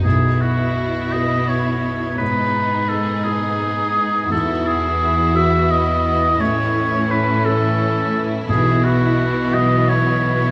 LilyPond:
<<
  \new Staff \with { instrumentName = "Oboe" } { \time 6/8 \key b \mixolydian \tempo 4. = 57 gis'8 fis'4 dis''8 cis''4 | b'4 a'8 gis'4. | a'8 gis'4 e''8 dis''4 | cis''4 b'8 a'4 r8 |
gis'8 fis'4 dis''8 cis''4 | }
  \new Staff \with { instrumentName = "Felt piano" } { \time 6/8 \key b \mixolydian b,,4. <e' b'>4. | gis,4. <dis' b'>4. | e,4. <fis' b'>4. | a,,4. <e' a'>4. |
b,,4. e'4. | }
  \new Staff \with { instrumentName = "Harp" } { \time 6/8 \key b \mixolydian b,8 e'8 b'8 b8 b'8 e'8 | gis,8 dis'8 b'8 b8 b'8 dis'8 | e,8 fis'8 b'8 b8 b'8 fis'8 | a,8 e'8 a'8 cis'8 a'8 e'8 |
b,8 e'8 b8 fis8 e'8 b8 | }
  \new Staff \with { instrumentName = "Violin section" } { \time 6/8 \key b \mixolydian << { e'2. | gis'2. | fis'2. | e'2.~ |
e'2. | } \\ { e'2. | dis'2. | e'2.~ | e'2. |
b2. | } >> }
  \new Staff \with { instrumentName = "Viola section" } { \time 6/8 \key b \mixolydian << { b2.~ | b2. | b2. | cis'2. |
b2. | } \\ { b2.~ | b2. | e2.~ | e2. |
e2. | } >> }
  \new Staff \with { instrumentName = "Cello section" } { \clef bass \time 6/8 \key b \mixolydian b,2. | gis,2. | e,2. | a,2. |
b,2. | }
>>